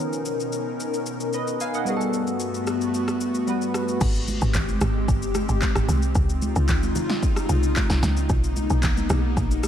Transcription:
Already playing: B2 D#3 B3 C#4 D#4 A#4
0.13 shaker
0.26 shaker
0.40 shaker
0.53 shaker
0.80 shaker
0.94 shaker
1.06 shaker
1.20 shaker
1.33 B4 D#5, shaker
1.47 shaker
1.61 F5 G#5, shaker
1.74 D#5 F#5, shaker
1.85 G2 G3 A3 B3 F#4, shaker
1.90 G#4
1.96 A4
2.01 shaker
2.13 shaker
2.27 shaker
2.40 shaker
2.54 shaker
2.67 cross-stick, shaker
2.81 shaker
2.94 shaker
3.08 cross-stick, shaker
3.21 shaker
3.35 shaker
3.47 G3 B3 F#4 B4, shaker
3.62 shaker
3.74 cross-stick, shaker
3.88 shaker
4.01 G#1 G#3 C4 G4, kick, crash, shaker
4.15 shaker
4.28 high conga, shaker
4.41 G#1, shaker
4.54 kick, clap, low conga, shaker
4.69 high conga, shaker
4.81 G#1, cross-stick, high conga, low conga, shaker
5.08 G1, kick, shaker
5.22 shaker
5.35 cross-stick, high conga, shaker
5.49 G1, shaker
5.62 kick, clap, high conga, shaker
5.75 G#1, cross-stick, shaker
5.88 C2, high conga, low conga, shaker
6.03 shaker
6.15 C#2 C#3 D#4 F4, kick, shaker
6.29 shaker
6.42 high conga, shaker
6.56 C#2, shaker
6.68 kick, clap, low conga, shaker
6.83 high conga, shaker
6.95 high conga, low conga, shaker
7.10 snare
7.23 kick, shaker
7.36 cross-stick, shaker
7.49 C2, high conga, shaker
7.63 shaker
7.76 kick, clap, high conga, shaker
7.90 C2, snare, shaker
8.03 C#2, snare, high conga, low conga, shaker
8.17 shaker
8.29 B1 A#3 B3, kick, shaker
8.44 shaker
8.56 high conga, shaker
8.70 B1, shaker
8.83 kick, clap, low conga, shaker
8.97 high conga, shaker
9.10 B1, cross-stick, high conga, low conga, shaker
9.37 A#1, kick, shaker
9.51 shaker
9.63 cross-stick, high conga, shaker

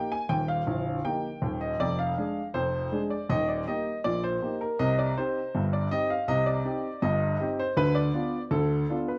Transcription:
Already playing: A#3 D#4 G4 G5
0.12 G#5
0.29 D#1 D#2 G5
0.48 F5
0.67 A#0 A#1
1.05 A#3 D#4 G4 G5
1.42 D#1 D#2
1.61 D#5
1.80 F1 F2 D5
1.99 F5
2.17 G#3 D4 G#4
2.54 F1 F2 C5
2.92 G#3 D4 G#4
3.10 D5
3.29 D#1 D#2 D#5
3.49 D5
3.67 A#3 D#4 G4 D#5
4.04 A#1 A#2 D5
4.24 C5
4.42 A#3 D#4 G4
4.61 A#4
4.79 C2 C3 D#5
4.99 D5
5.17 C4 D#4 G4 C5
5.55 G1 G2
5.73 D5
5.91 C4 D#4 G4 D#5
6.10 F5
6.28 C2 C3 D#5
6.46 D5
6.65 C4 D#4 G4
7.02 G1 G2 D#5
7.40 C4 D#4 G4
7.59 C5
7.77 D2 D3 B4
7.95 D5
8.14 B3 D4 F4
8.51 D2 D3 A4
8.90 B3 D4 F4
9.08 B4

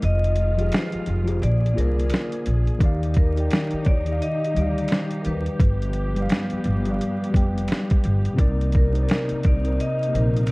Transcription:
0.02 F1 D#3 G#3 F4 D#5, closed hi-hat
0.24 closed hi-hat
0.36 closed hi-hat
0.56 F3 F4 G4, closed hi-hat
0.61 G#4 D#5
0.68 B4, closed hi-hat
0.72 C5, finger snap, snare
0.92 muted upright bass stroke, closed hi-hat
1.06 F1, closed hi-hat
1.24 F3 F4 G4, closed hi-hat
1.29 G#4 C5
1.41 A#1 D3 A#3 G#4 D5, closed hi-hat
1.66 closed hi-hat
1.74 C2 A#3 F4 G#4 A#4
1.78 C5 D5, closed hi-hat
1.99 closed hi-hat
2.09 finger snap, closed hi-hat
2.14 snare
2.32 closed hi-hat
2.46 A#1, closed hi-hat
2.67 closed hi-hat
2.79 D#2 D#3 D#4 G4, kick, closed hi-hat
2.84 D5 F5
3.03 closed hi-hat
3.14 A#4, kick, closed hi-hat
3.34 D#3 D#4 G4, closed hi-hat
3.39 D5 G5
3.51 finger snap, snare, closed hi-hat
3.71 muted upright bass stroke, closed hi-hat
3.82 C#5, kick, closed hi-hat
3.87 D#2 D5
4.05 D#3 D#4 G4, closed hi-hat
4.11 D5 F5
4.22 D#5, closed hi-hat
4.44 closed hi-hat
4.54 D2 G3 D#4 G4 D5, closed hi-hat
4.59 D5 F5
4.78 closed hi-hat
4.88 C5, finger snap, closed hi-hat
4.92 snare
5.11 closed hi-hat
5.21 A#4, closed hi-hat
5.26 D#2 B4
5.46 closed hi-hat
5.60 G1 F3 B3, kick, closed hi-hat
5.82 closed hi-hat
5.93 closed hi-hat
6.15 G3 G4 B4, closed hi-hat
6.20 D5 F5
6.29 finger snap, snare, closed hi-hat
6.50 muted upright bass stroke, closed hi-hat
6.64 G1, closed hi-hat
6.85 G3 G4 B4, closed hi-hat
6.90 D5 F5
7.01 closed hi-hat
7.24 closed hi-hat
7.30 G3 G4 B4
7.34 F1 D5 G5, kick, closed hi-hat
7.58 closed hi-hat
7.68 finger snap, closed hi-hat
7.72 snare
7.90 kick, closed hi-hat
8.04 G1, closed hi-hat
8.25 closed hi-hat
8.34 C3 C4 D#4
8.39 C2 C3 A#3 D#4 A#4 D5, kick, closed hi-hat
8.61 closed hi-hat
8.72 kick, closed hi-hat
8.77 A#4
8.90 C3 C4 D#4
8.95 A#4 C5, closed hi-hat
9.03 D5
9.09 finger snap, snare, closed hi-hat
9.29 muted upright bass stroke, closed hi-hat
9.43 C2 D5, kick, closed hi-hat
9.61 C3 C4 D#4, closed hi-hat
9.66 A#4 C5
9.80 D#5, closed hi-hat
10.03 closed hi-hat
10.09 C3 C4 D#4
10.14 A#1 A#4 C5, closed hi-hat
10.37 closed hi-hat
10.47 finger snap, closed hi-hat

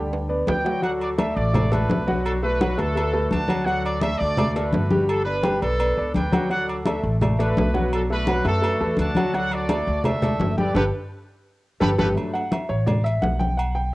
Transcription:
Already playing: D2 D3 G3 D4 G4 G5
0.13 high conga, high timbale
0.29 B3 B4 D5, high conga
0.47 D2 B4 D5 G5, high conga, low timbale
0.65 F#3 F#4 F#5, low timbale
0.82 F#3 F#4 A4 D5 F#5, high conga, low agogo
1.01 D5, high conga, low agogo
1.18 A3 A4 D5 E5, high conga, low agogo
1.35 A1 F#4 A4 D5, high conga
1.53 A3 A4 D5, high conga, low conga, low agogo
1.71 A3 D4 F#4 A4 B4 D5, high conga, low conga, low agogo
1.90 B1, high conga, low timbale
2.07 F#3 F#4 F#5, high conga
2.25 D4 F#4 A4, high conga, low agogo
2.43 A3 D4 F#4 A4 B4, high conga
2.61 F#3 F#4 F#5, high conga, low agogo
2.77 D2 A3 D4 F#4 A4 B4, low agogo
2.95 A3 A4 B4, high conga, low agogo
3.13 A3 A4 B4, high conga
3.31 D2 D5 F#5 A5, high conga, low agogo
3.48 F#3 F#4 F#5, high conga, low agogo
3.66 F#3 F#4 A4 D5 F#5, high conga, low agogo
3.84 D5, high conga, low agogo
4.01 A3 A4 D5 E5, high conga, low agogo
4.18 D2 F#4 A4 D5, high conga
4.37 A3 A4 D5, high conga, low conga, low agogo
4.54 A3 D4 F#4 A4 B4 D5, high conga, low agogo
4.73 G1, high conga, low timbale
4.91 G3 G4 G5, high conga
5.08 D4 A4, high conga, low agogo
5.25 B3 D4 B4 D5, high conga
5.43 G3 G4 G5, high conga, low agogo
5.61 B1 B3 D4 A4 B4 D5, high conga, low agogo
5.79 B3 B4 D5, high conga, low agogo
5.97 C#2 B3 B4 D5, high conga
6.14 D2 B4 D5 G5, high conga, low agogo
6.32 F#3 F#4 F#5, high conga, low agogo
6.50 F#3 F#4 A4 D5 F#5, high conga, low agogo
6.68 D5, high conga, low agogo
6.86 A3 A4 D5 E5, high conga, low agogo
7.03 A1, high conga
7.21 A3 A4 D5, high conga, low conga, low agogo
7.39 A3 D4 F#4 A4 B4 D5, high conga, low agogo
7.57 B1, high conga, low timbale
7.74 F#3 F#4 F#5, high conga
7.92 D4 F#4 A4, high conga, low agogo
8.10 A3 D4 F#4 A4 B4, high conga
8.27 F#3 F#4 F#5, high conga, low agogo
8.44 F#2 A3 D4 F#4 A4 B4, high conga, low agogo
8.62 A3 A4 B4, high conga, low agogo
8.80 E2 A3 A4 B4, high conga
8.97 D2 D5 F#5 A5, high conga, low agogo
9.15 F#3 F#4 F#5, high conga, low agogo
9.33 F#3 F#4 A4 D5 F#5, high conga, low agogo
9.50 F#4 A4 D5, high conga, low agogo
9.69 A3 A4 D5, high conga, low agogo
9.87 D2, high conga
10.04 A3 A4 D5 E5, high conga, low conga, low agogo
10.22 A3 A4 D5, high conga, low conga, low agogo
10.40 G1, high conga, low timbale
10.57 G3 G4 A4 B4 D5 G5, high conga
10.75 G1 G4 A4 B4, high conga, high timbale
11.80 G1 G4 A4 B4, high conga, high timbale
11.98 G1 G4 A4 B4, high conga, high timbale
12.15 F#3 A3 D4, high conga, low agogo
12.34 F#5, high conga, low agogo
12.51 E5, high conga, low agogo
12.69 A1 C#5, high conga
12.86 D5, high conga, low conga, low agogo
13.04 E5, high conga, low agogo
13.22 B1 F#5, high conga, low timbale
13.39 G5, high conga
13.57 F#5, high conga, low agogo
13.75 G5, high conga

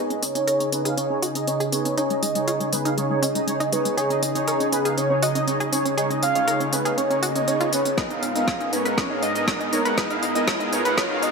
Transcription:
Already playing: C#3 C#4 D#4 G#4 B4, riser
0.10 C#4 D#4 G#4 D#5, closed hi-hat
0.23 C#4 C#5, open hi-hat
0.35 C#4 D#4 G#4 C#5, closed hi-hat
0.47 D#4 G#4 A#4 C#5, closed hi-hat
0.60 C#4, closed hi-hat
0.72 C#4 D#4 G#4 B4, open hi-hat
0.85 D#4 G#4 F5, closed hi-hat
0.98 C#4 D#4 G#4 C#5, closed hi-hat
1.10 C#4 D#4 G#4 C#5
1.22 F#4 D#5, open hi-hat
1.35 C#4 D#4 G#4 D#5, closed hi-hat
1.47 C#4 D#4 G#4 C#5, closed hi-hat
1.60 G#4, closed hi-hat
1.72 C#4 D#4 G#4 B4 C#5, open hi-hat
1.85 C#4, closed hi-hat
1.97 D#4 G#4 C#5, closed hi-hat
2.10 G#3 D#4 G#4 D#5, closed hi-hat
2.23 G#3 D#5, open hi-hat
2.35 G#3 D#4 G#4 C#5, closed hi-hat
2.48 D#4 F4 G#4 C#5, closed hi-hat
2.60 G#3, closed hi-hat
2.73 G#3 D#4 G#4 B4, open hi-hat
2.85 D#4 G#4 F5, closed hi-hat
2.97 G#3 D#4 G#4 C#5, closed hi-hat
3.10 G#3 D#4 G#4 C#5
3.22 C#4 D#5, open hi-hat
3.35 G#3 D#4 G#4 D#5, closed hi-hat
3.47 G#3 D#4 G#4 C#5, closed hi-hat
3.60 D#4, closed hi-hat
3.72 G#3 D#4 G#4 B4 C#5, open hi-hat
3.85 G#3, closed hi-hat
3.97 D#4 G#4 C#5, closed hi-hat
4.10 C#4 D#4 G#4 D#5, closed hi-hat
4.23 C#4 D#5, open hi-hat
4.35 C#4 D#4 G#4 C#5, closed hi-hat
4.48 D#4 G#4 A#4 C#5, closed hi-hat
4.60 C#4, closed hi-hat
4.72 C#4 D#4 G#4 B4, open hi-hat
4.85 D#4 G#4 F5, closed hi-hat
4.97 C#4 D#4 G#4 C#5, closed hi-hat
5.10 C#4 D#4 G#4 C#5
5.22 F#4 D#5, open hi-hat
5.35 C#4 D#4 G#4 D#5, closed hi-hat
5.48 C#4 D#4 G#4 C#5, closed hi-hat
5.60 G#4, closed hi-hat
5.72 C#4 D#4 G#4 C#5, open hi-hat
5.85 C#4, closed hi-hat
5.97 D#4 G#4 C#5 D#5, closed hi-hat
6.10 C#4 D#4 G#4 D#5, closed hi-hat
6.23 C#4 F5, open hi-hat
6.35 C#4 D#4 G#4 C#5, closed hi-hat
6.47 D#4 G#4 A#4 C#5, closed hi-hat
6.60 C#4, closed hi-hat
6.72 C#4 D#4 G#4 B4, open hi-hat
6.85 D#4 G#4 F5, closed hi-hat
6.97 C#4 D#4 G#4 C#5, closed hi-hat
7.10 C#4 D#4 G#4 C#5, closed hi-hat
7.23 F#4 D#5, open hi-hat
7.35 C#4 D#4 G#4 C#5, closed hi-hat
7.47 C#4 D#4 G#4 C#5, closed hi-hat
7.60 D#4 F4 G#4 C#5, closed hi-hat
7.72 C#4 D#4 G#4 B4 C#5, open hi-hat
7.85 C#4, closed hi-hat
7.97 G#2 G#3 B3 D#4 G#4 A#4 B4 D#5, kick, snare, closed hi-hat
8.10 B3 D#4 G#4 A#4 F5, closed hi-hat
8.23 D#4 F5, open hi-hat
8.35 B3 D#4 G#4 A#4 D#5, closed hi-hat
8.48 B3 D#4 G#4 A#4 C#5 D#5, kick, snare, closed hi-hat
8.60 D#4, closed hi-hat
8.73 B3 D#4 G#4 A#4 B4 C#5, open hi-hat
8.85 B3 D#4 G#4 A#4 B4 F#5, closed hi-hat
8.97 B3 D#4 G#4 A#4 B4 C#5 D#5, kick, snare, closed hi-hat
9.10 B3 D#4 G#4 A#4 F5
9.23 D#4 D#5, open hi-hat
9.35 B3 D#4 G#4 A#4 D#5, closed hi-hat
9.48 B3 D#4 G#4 A#4 C#5 D#5, kick, snare, closed hi-hat
9.60 D#4, closed hi-hat
9.73 B3 D#4 G#4 A#4 C#5, open hi-hat
9.85 B3 D#4 G#4 A#4 B4 F#5, closed hi-hat
9.97 B3 D#4 G#4 A#4 B4 D#5, kick, snare, closed hi-hat
10.10 B3 D#4 G#4 A#4 F5, closed hi-hat
10.23 D#4 D#5, open hi-hat
10.35 B3 D#4 G#4 A#4 D#5, closed hi-hat
10.47 B3 D#4 G#4 A#4 C#5 D#5, kick, snare, closed hi-hat
10.60 D#4, closed hi-hat
10.72 B3 D#4 G#4 A#4 B4 C#5, open hi-hat
10.85 B3 D#4 G#4 A#4 B4 F#5, closed hi-hat
10.98 B3 D#4 G#4 A#4 B4 C#5 D#5, kick, snare, closed hi-hat
11.10 B3 D#4 G#4 A#4 F5
11.22 D#4 D#5, open hi-hat

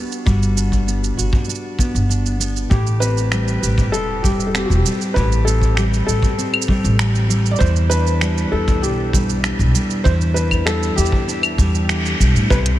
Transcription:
Already playing: G3 B3 D4 F#4
0.12 shaker
0.26 G1 G3 F#4, kick, shaker
0.43 shaker
0.56 D4, shaker
0.72 kick, shaker
0.87 B3, shaker
1.04 shaker
1.17 G1 F#4, shaker
1.33 kick, shaker
1.45 D4, shaker
1.50 shaker
1.55 shaker
1.79 B3, kick, shaker
1.94 G1, shaker
2.09 D4, shaker
2.26 shaker
2.40 B3, shaker
2.57 shaker
2.70 A1 A2 G4, kick, shaker
2.87 shaker
3.00 C4 B4, shaker
3.17 shaker
3.32 G3, finger snap, shaker
3.48 shaker
3.62 A1 G4, shaker
3.78 kick, shaker
3.92 E1 C4 A4, shaker
4.23 G3 G4, kick, shaker
4.40 shaker
4.47 A4
4.54 C4 G4, finger snap, shaker
4.66 F#4
4.70 E1, shaker
4.75 G4
4.85 G3, shaker
5.01 shaker
5.14 A1 A2 G4 B4, kick, shaker
5.32 shaker
5.45 C4 A4, shaker
5.62 kick, shaker
5.75 G3 G4, finger snap, shaker
5.94 shaker
6.06 A1 G4 A4, shaker
6.23 kick, shaker
6.38 C4, shaker
6.54 claves
6.62 shaker
6.68 G3, kick
6.84 A1, shaker
6.99 C4, finger snap, shaker
7.15 shaker
7.29 G3, shaker
7.46 shaker
7.51 D5
7.56 C5, shaker
7.60 E2 E4, kick, shaker
7.76 shaker
7.90 D4 B4, shaker
8.07 shaker
8.21 G3, finger snap, shaker
8.38 shaker
8.52 E2 E4 A4
8.68 kick, shaker
8.82 B1 D4 G4, shaker
9.13 G3, kick, shaker
9.30 shaker
9.44 D4, finger snap, shaker
9.59 B1, shaker
9.74 G3, shaker
9.90 shaker
10.04 E2 E4 C5, kick, shaker
10.21 shaker
10.34 D4 B4, shaker
10.51 kick, claves, shaker
10.66 G3 A4, finger snap, shaker
10.83 shaker
10.96 E2 E4 G4, shaker
11.06 shaker
11.12 kick
11.28 D4, shaker
11.43 claves, shaker
11.58 E2 G3, kick, shaker
11.75 shaker
11.89 D4, finger snap, shaker
12.06 shaker
12.20 B1 G3, kick, shaker
12.36 A2, shaker
12.50 C2 C3 B4, kick, shaker
12.66 closed hi-hat

